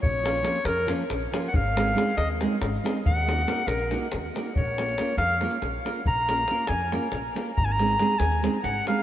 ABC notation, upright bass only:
X:1
M:7/8
L:1/8
Q:1/4=139
K:Bbm
V:1 name="Upright bass" clef=bass
B,,,3 F,,2 B,,, z | A,,,3 E,,2 A,,, z | E,,3 B,,,2 E,, z | B,,,3 F,,2 B,,, z |
B,,,3 F,,2 B,,, z | A,,,3 E,,2 A,,, z |]